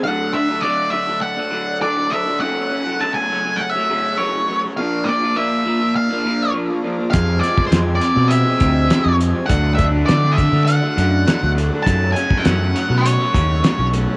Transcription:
0.04 D3 F#3 A3 D4 F#4 A4 D5 F#5
0.33 D3 F#3 A3 D4 E5
0.49 F#3 A3 D4
0.61 D3 F#3 A3 D5
0.65 D4
0.90 D3 F#3 A3 D4 E5
1.07 F#3 A3 D4
1.22 F#5
1.37 F#3 A3 D4
1.51 D3 F#3 A3 D4
1.80 D3 F#3 A3 D4 D5
1.97 F#3 A3 D4
2.09 D3 F#3 A3 D4 E5
2.25 F#3 A3 D4
2.40 F#2 C#3 F#3 A3 C#4 F#4 C#5 F#5
2.69 C#3 F#3 A3 C#4
2.85 F#3 A3 C#4
2.99 F#2 C#3 F#3 A3 C#4 A5
3.14 G#5
3.30 C#3 F#3 A3 C#4
3.44 F#3 A3 C#4
3.56 F#5
3.70 C#4 E5
3.75 F#3 A3
3.89 C#3 F#3 A3 C#4
4.18 F#2 C#3 F#3 A3 C#4 C#5
4.33 F#3 A3 C#4
4.48 C#3 F#3 A3 C#4
4.63 F#3 A3 C#4
4.77 A#2 F3 A#3 D4 F4 A#4 D5 F5
5.04 A#2 F3 A#3 D4 D5
5.20 F3 A#3 D4
5.35 A#2 F3 A#3 D4 E5
5.65 A#2 F3 A#3 D4
5.79 F3 A#3 D4
5.96 F5
6.09 F3 A#3 D4
6.23 A#2 F3 A#3 D4
6.52 A#2 F3 A#3 D4
6.68 F3 A#3 D4
6.83 A#2 F3 A#3 D4
6.98 F3 A#3 D4
7.10 F2 C3 F3 G#3 C4 C5 F5, kick, closed hi-hat
7.14 G#4 G#5
7.39 C3 F3 G#3 C4 D5
7.44 closed hi-hat
7.56 F3 G#3 C4, kick
7.67 F2 C3 C5
7.71 F2 F3 G#3 C4, snare, closed hi-hat
7.95 D5
8.00 C3 F3 G#3 C4, closed hi-hat
8.15 B2 F3 G#3 C4
8.28 E5, closed hi-hat
8.43 F3 G#3 C4
8.57 C3 F3 G#3 C4, kick, closed hi-hat
8.61 D2
8.87 F2 C3 F3 G#3 C4, closed hi-hat
8.91 snare
9.03 F2 F3 G#3 C4
9.17 C3 F3 G#3 C4
9.21 closed hi-hat
9.31 F3 G#3 C4
9.46 D3 F#3 A3 D4 F#5, kick, closed hi-hat
9.50 D2 F#4 A4 D5
9.75 D3 F#3 A3 D4 E5, closed hi-hat
9.79 kick
9.91 F#3 A3 D4
10.06 D3 F#3 A3 D4 D5, snare, closed hi-hat
10.32 E5
10.37 D3 F#3 A3 D4, kick, closed hi-hat
10.52 D3 F#3 A3 D4
10.65 F#5, closed hi-hat
10.81 F#3 A3 D4
10.96 F#2 D3 F#3 A3 D4, closed hi-hat
11.26 D3 F#3 A3 D4, snare, closed hi-hat
11.41 D2 F#3 A3 D4
11.55 D3 F#3 A3 D4, closed hi-hat
11.70 F#3 A3 D4
11.83 F#2 C#3 F#3 A3 C#4 C#5 F#5 A5, kick
11.87 F#2, closed hi-hat
12.12 C#3 F#3 A3 C#4 G#5, closed hi-hat
12.29 F#3 A3 C#4, kick
12.38 F#5
12.44 F#2 C#3 F#3 A3 C#4, snare, closed hi-hat
12.73 C#3 F#3 A3 C#4, closed hi-hat
12.88 B2 F#3 A3 C#4
12.98 C#5
13.06 closed hi-hat
13.18 F#3 A3 C#4
13.32 D#2 C#3 F#3 A3 C#4, kick, closed hi-hat
13.62 F#2 C#3 F#3 A3 C#4, snare, closed hi-hat
13.76 B1 F#3 A3 C#4
13.91 C#3 F#3 A3 C#4, closed hi-hat
14.08 F#3 A3 C#4

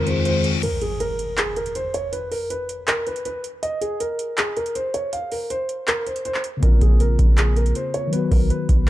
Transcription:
Already playing: F2 D#3 G#3 C4 F4 G#4 C5, reverse cymbal
0.04 D#3 G#3 C4 C5, closed hi-hat
0.08 F4 G#4
0.25 C5, closed hi-hat
0.44 closed hi-hat
0.63 A#4, closed hi-hat, crash, impact
0.81 G#4, closed hi-hat
1.00 A#4, closed hi-hat
1.19 closed hi-hat
1.38 G#4, clap, closed hi-hat
1.56 A#4, closed hi-hat
1.66 closed hi-hat
1.75 C5, closed hi-hat
1.94 C#5, closed hi-hat
2.13 B4, closed hi-hat
2.31 A#4, open hi-hat
2.50 B4, closed hi-hat
2.69 closed hi-hat
2.88 A#4, clap, closed hi-hat
3.07 B4, closed hi-hat
3.16 closed hi-hat
3.25 B4, closed hi-hat
3.44 closed hi-hat
3.63 D#5, closed hi-hat
3.81 G#4, closed hi-hat
4.00 A#4, closed hi-hat
4.19 closed hi-hat
4.38 G#4, clap, closed hi-hat
4.57 A#4, closed hi-hat
4.66 closed hi-hat
4.75 C5, closed hi-hat
4.94 C#5, closed hi-hat
5.13 F5, closed hi-hat
5.32 A#4, open hi-hat
5.50 C5, closed hi-hat
5.69 closed hi-hat
5.88 A#4, clap, closed hi-hat
6.07 C5, closed hi-hat
6.16 closed hi-hat
6.25 C5, closed hi-hat
6.34 clap
6.44 closed hi-hat
6.57 C#3 A#3
6.63 A#1 C4 F4 A#4, kick, closed hi-hat
6.69 A#4
6.81 A#1 G#4, kick, closed hi-hat
7.00 A#4, closed hi-hat
7.19 A#1, kick, closed hi-hat
7.38 G#4, clap, closed hi-hat
7.56 A#4, closed hi-hat
7.66 closed hi-hat
7.75 C5, closed hi-hat
7.94 C#5, closed hi-hat
8.07 D#3 F#3
8.13 B3 F#4 B4, closed hi-hat
8.19 B4
8.31 B1 A#4, kick, open hi-hat
8.50 B4, closed hi-hat
8.69 B1, kick, closed hi-hat

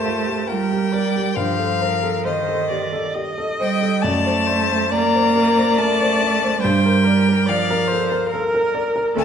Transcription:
Already playing: G2 A3 G4 A#4 C5 A5
0.05 F4
0.27 G4
0.48 F4 A#4 G5
0.52 G3
0.72 G4
0.93 A#4 D5
1.16 G4
1.35 G2 C5 F5
1.40 F3
1.59 A4
1.81 A#4 C5
2.03 A4
2.25 D#3 C5 D#5
2.49 A4
2.70 G4 D5
2.93 A4
3.14 G4 D#5
3.38 A4
3.60 G3 C5 G5
3.83 A4
4.02 F#2 A3 D5 A5
4.26 C5
4.47 C5 D5
4.70 C5
4.91 A#3 D5 A#5
5.15 C5
5.34 A#4 D5
5.58 C5
5.78 A3 A#4 A5
6.02 C5
6.22 D5
6.44 C5
6.61 G2 G3 C5 G5
6.86 A#4
7.04 A#4 D5
7.29 A#4
7.46 F3 D5 F5
7.70 A#4
7.88 C5
7.92 A4
8.12 A#4
8.29 A#4
8.34 A4
8.54 A#4
8.75 D5
8.96 A#4
9.15 D2 A3 A4 A5

